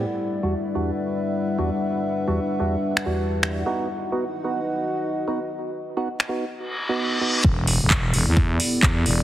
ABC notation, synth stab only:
X:1
M:4/4
L:1/16
Q:"Swing 16ths" 1/4=130
K:Em
V:1 name="Synth stab"
z3 [E,,G,DF] z2 [E,,G,DF] z6 [E,,G,DF] z2 | z3 [E,,G,DF] z2 [E,,G,DF] z3 [E,,G,DF]4- [E,,G,DF] [B,^DF]- | [B,^DF] z2 [B,DF] z2 [B,DF] z6 [B,DF] z2 | z3 [B,^DF] z2 [B,DF] z4 [B,DF]3 [B,DF]2 |
z16 |]